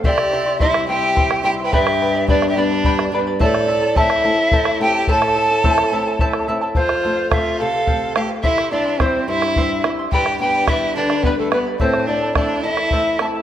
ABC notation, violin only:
X:1
M:6/8
L:1/16
Q:3/8=71
K:Am
V:1 name="Violin"
G4 E2 G4 G3/2 B/2 | G4 D3/2 G/2 D4- D/2 z3/2 | A4 E6 G2 | A8- A2 z2 |
F4 F2 A4 G2 | E2 D2 C2 E4- E/2 z3/2 | G2 G2 E2 D2 B, A, B,2 | C2 D2 D2 E4- E/2 z3/2 |]